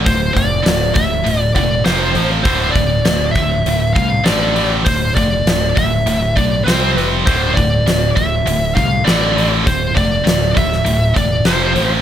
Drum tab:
HH |o-o-o-o-o-o-o-o-|o-o-o-o-o-o-o-o-|o-o-o-o-o-o-o-o-|o-o-o-o-o-o-o-o-|
SD |----o-------o---|----o-------o---|----o-------o---|----o-------o---|
BD |o-o---o---o-----|o-o---o---o-----|o-o---o---o-----|o-o---o---o-----|

HH |o-o-o-o-o-o-o-o-|
SD |----o--o----o---|
BD |o-o---o---o-----|